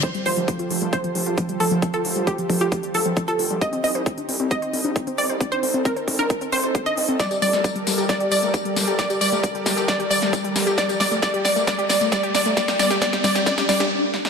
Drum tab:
HH |xxoxxxoxxxoxxxox|xxoxxxoxxxoxxxox|xxoxxxoxxxoxxxox|xxoxxxoxxxoxxxox|
TB |----------------|----------------|----------------|----------------|
SD |----------------|----------------|----------------|----------------|
BD |o---o---o---o---|o---o-o-o---o---|o---o---o---o---|o---o-o-o---o---|

HH |xxoxxxoxxxoxxxox|xxoxxxoxxxoxxxox|xxoxxxoxxxoxxxox|xxoxxxoxxxox----|
TB |xxxxx-xxx-xxx-xx|xxxxx-xxx-xxx-xx|xxxxx-xxx-xxx-xx|xxxxx-xxxxxx----|
SD |o--o--o-o-----o-|o-----o-o--o--o-|o-o-o-o-o-o-o-o-|oooooooooooo--oo|
BD |o---o---o---o---|o---o-o-o---o---|o---o---o---o---|o---o-o-o-------|